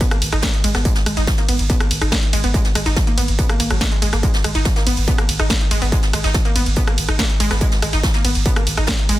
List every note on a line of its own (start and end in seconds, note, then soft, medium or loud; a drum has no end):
0.00 0.10 B3 medium
0.00 kick loud
0.00 closed hi-hat medium
0.00 ride medium
0.11 0.17 A#3 medium
0.11 cross-stick medium
0.11 closed hi-hat medium
0.22 0.32 G#1 loud
0.22 closed hi-hat medium
0.22 open hi-hat loud
0.22 ride medium
0.32 0.43 G#1 medium
0.32 0.36 D#4 loud
0.32 cross-stick medium
0.32 closed hi-hat medium
0.42 0.47 A#3 medium
0.42 kick loud
0.42 snare loud
0.42 closed hi-hat medium
0.42 ride medium
0.54 closed hi-hat medium
0.64 0.74 G#1 loud
0.64 0.73 G#3 loud
0.64 closed hi-hat medium
0.64 open hi-hat loud
0.64 ride medium
0.75 0.85 G#1 medium
0.75 0.78 B3 medium
0.75 cross-stick medium
0.75 snare medium
0.75 closed hi-hat medium
0.85 0.94 G#3 medium
0.85 kick loud
0.85 closed hi-hat medium
0.85 ride medium
0.95 snare medium
0.95 closed hi-hat medium
1.06 1.16 G#1 loud
1.06 1.10 G#3 medium
1.06 cross-stick medium
1.06 closed hi-hat medium
1.06 open hi-hat loud
1.06 ride medium
1.17 1.27 G#1 medium
1.17 1.21 D#4 loud
1.17 snare soft
1.17 closed hi-hat medium
1.27 kick loud
1.27 snare loud
1.27 closed hi-hat medium
1.27 ride medium
1.37 1.47 A#3 medium
1.37 snare medium
1.37 closed hi-hat medium
1.49 1.59 G#1 loud
1.49 1.55 B3 medium
1.49 open hi-hat loud
1.49 open hi-hat medium
1.49 ride medium
1.59 1.69 G#1 medium
1.59 closed hi-hat medium
1.70 1.79 B3 medium
1.70 kick loud
1.70 closed hi-hat medium
1.70 ride medium
1.80 1.86 A#3 medium
1.80 cross-stick medium
1.80 closed hi-hat medium
1.91 2.01 G#1 loud
1.91 closed hi-hat medium
1.91 open hi-hat loud
1.91 ride medium
2.01 2.12 G#1 medium
2.01 2.05 D#4 loud
2.01 cross-stick medium
2.01 closed hi-hat medium
2.12 2.16 A#3 medium
2.12 kick loud
2.12 snare loud
2.12 closed hi-hat medium
2.12 ride medium
2.23 closed hi-hat medium
2.33 2.43 G#1 loud
2.33 2.42 G#3 loud
2.33 closed hi-hat medium
2.33 open hi-hat loud
2.33 ride medium
2.44 2.54 G#1 medium
2.44 2.47 B3 medium
2.44 closed hi-hat medium
2.44 closed hi-hat soft
2.54 2.64 G#3 medium
2.54 kick loud
2.54 closed hi-hat medium
2.54 ride medium
2.65 snare soft
2.65 closed hi-hat medium
2.75 2.85 G#1 loud
2.75 2.79 G#3 medium
2.75 cross-stick medium
2.75 closed hi-hat medium
2.75 open hi-hat loud
2.75 ride medium
2.86 2.96 G#1 medium
2.86 2.90 D#4 loud
2.86 snare soft
2.86 closed hi-hat medium
2.96 kick loud
2.96 snare loud
2.96 closed hi-hat medium
2.96 ride medium
3.07 3.16 A#3 medium
3.07 closed hi-hat medium
3.18 3.28 G#1 loud
3.18 3.24 B3 medium
3.18 closed hi-hat medium
3.18 open hi-hat loud
3.18 ride medium
3.28 3.38 G#1 medium
3.28 closed hi-hat medium
3.39 3.48 B3 medium
3.39 kick loud
3.39 closed hi-hat medium
3.39 ride medium
3.49 3.55 A#3 medium
3.49 cross-stick medium
3.49 closed hi-hat medium
3.60 3.70 G#1 loud
3.60 3.69 A#3 medium
3.60 closed hi-hat medium
3.60 open hi-hat loud
3.60 ride medium
3.70 3.81 G#1 medium
3.70 3.77 F#3 medium
3.70 cross-stick medium
3.70 closed hi-hat medium
3.81 3.87 A#3 medium
3.81 kick loud
3.81 snare loud
3.81 closed hi-hat medium
3.92 3.98 G#3 medium
3.92 closed hi-hat medium
4.02 4.12 G#1 loud
4.02 4.11 G#3 loud
4.02 closed hi-hat medium
4.02 open hi-hat loud
4.02 ride medium
4.13 4.23 G#1 medium
4.13 4.19 A#3 medium
4.13 cross-stick medium
4.13 snare soft
4.13 closed hi-hat medium
4.23 4.32 G#3 medium
4.23 kick loud
4.23 closed hi-hat medium
4.23 ride medium
4.34 snare medium
4.34 closed hi-hat medium
4.44 4.54 G#1 loud
4.44 4.48 G#3 medium
4.44 cross-stick medium
4.44 closed hi-hat medium
4.44 open hi-hat loud
4.44 ride medium
4.55 4.65 G#1 medium
4.55 4.59 D#4 loud
4.55 snare soft
4.55 closed hi-hat medium
4.65 kick loud
4.65 snare loud
4.65 closed hi-hat medium
4.65 ride medium
4.76 4.85 A#3 medium
4.76 snare soft
4.76 closed hi-hat medium
4.86 4.97 G#1 loud
4.86 4.93 B3 medium
4.86 open hi-hat medium
4.86 open hi-hat loud
4.86 ride medium
4.97 5.08 G#1 medium
4.97 closed hi-hat soft
5.08 5.17 B3 medium
5.08 kick loud
5.08 closed hi-hat medium
5.08 ride medium
5.18 5.24 A#3 medium
5.18 cross-stick medium
5.18 closed hi-hat medium
5.29 5.39 G#1 loud
5.29 closed hi-hat medium
5.29 open hi-hat loud
5.29 ride medium
5.39 5.50 G#1 medium
5.39 5.43 D#4 loud
5.39 cross-stick medium
5.39 closed hi-hat soft
5.50 5.54 A#3 medium
5.50 kick loud
5.50 snare loud
5.50 closed hi-hat medium
5.50 ride medium
5.61 closed hi-hat soft
5.71 5.81 G#1 loud
5.71 5.80 G#3 loud
5.71 closed hi-hat medium
5.71 open hi-hat loud
5.71 ride medium
5.82 5.92 G#1 medium
5.82 5.85 B3 medium
5.82 closed hi-hat medium
5.82 closed hi-hat soft
5.92 6.02 G#3 medium
5.92 kick loud
5.92 closed hi-hat medium
5.92 ride medium
6.03 snare soft
6.03 closed hi-hat medium
6.13 6.23 G#1 loud
6.13 6.17 G#3 medium
6.13 cross-stick medium
6.13 closed hi-hat medium
6.13 open hi-hat loud
6.13 ride medium
6.24 6.34 G#1 medium
6.24 6.28 D#4 loud
6.24 snare soft
6.24 closed hi-hat medium
6.34 kick loud
6.34 snare loud
6.34 closed hi-hat medium
6.34 ride medium
6.45 6.54 A#3 medium
6.45 closed hi-hat soft
6.56 6.66 G#1 loud
6.56 6.62 B3 medium
6.56 closed hi-hat medium
6.56 open hi-hat loud
6.56 ride medium
6.66 6.76 G#1 medium
6.66 closed hi-hat medium
6.76 6.86 B3 medium
6.76 kick loud
6.76 closed hi-hat medium
6.76 ride medium
6.87 6.93 A#3 medium
6.87 cross-stick medium
6.87 closed hi-hat medium
6.98 7.08 G#1 loud
6.98 closed hi-hat medium
6.98 open hi-hat loud
6.98 ride medium
7.08 7.19 G#1 medium
7.08 7.12 D#4 loud
7.08 cross-stick medium
7.08 closed hi-hat medium
7.19 7.23 A#3 medium
7.19 kick loud
7.19 snare loud
7.19 closed hi-hat medium
7.19 ride medium
7.30 closed hi-hat medium
7.40 7.50 G#1 loud
7.40 7.49 G#3 loud
7.40 closed hi-hat medium
7.40 open hi-hat loud
7.40 ride medium
7.50 7.61 G#1 medium
7.50 7.54 B3 medium
7.50 cross-stick medium
7.50 snare medium
7.50 closed hi-hat medium
7.61 7.71 G#3 medium
7.61 kick loud
7.61 closed hi-hat loud
7.61 closed hi-hat medium
7.61 ride medium
7.72 snare medium
7.72 closed hi-hat medium
7.82 7.92 G#1 loud
7.82 7.86 G#3 medium
7.82 cross-stick medium
7.82 closed hi-hat medium
7.82 open hi-hat loud
7.82 ride medium
7.93 8.03 G#1 medium
7.93 7.97 D#4 loud
7.93 snare soft
7.93 closed hi-hat medium
8.03 kick loud
8.03 snare loud
8.03 closed hi-hat medium
8.03 ride medium
8.14 8.23 A#3 medium
8.14 snare soft
8.14 closed hi-hat medium
8.24 8.35 G#1 loud
8.24 8.31 B3 medium
8.24 open hi-hat medium
8.24 open hi-hat loud
8.24 ride medium
8.35 8.46 G#1 medium
8.35 closed hi-hat medium
8.45 8.55 B3 medium
8.45 kick loud
8.45 closed hi-hat medium
8.45 ride medium
8.56 8.62 A#3 medium
8.56 cross-stick medium
8.56 closed hi-hat medium
8.67 8.77 G#1 loud
8.67 closed hi-hat medium
8.67 open hi-hat loud
8.67 ride medium
8.77 8.88 G#1 medium
8.77 8.81 D#4 loud
8.77 cross-stick medium
8.77 closed hi-hat soft
8.87 8.92 A#3 medium
8.87 kick loud
8.87 snare loud
8.87 closed hi-hat medium
8.87 ride medium
8.99 closed hi-hat medium
9.09 9.19 G#1 loud
9.09 9.18 G#3 loud
9.09 closed hi-hat medium
9.09 open hi-hat loud
9.09 ride medium